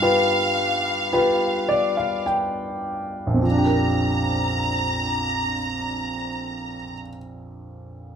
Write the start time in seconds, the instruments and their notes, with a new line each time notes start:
Already playing: grand piano G2, violin section F5
0.02 grand piano F4 G4 B4
1.13 grand piano F4 G4 B4
1.69 grand piano D5
1.97 grand piano F5
2.26 grand piano G5
3.27 grand piano A#1
3.34 grand piano F2
3.43 grand piano F3, violin section A#5
3.51 grand piano D4
3.58 grand piano G4
3.66 grand piano A#4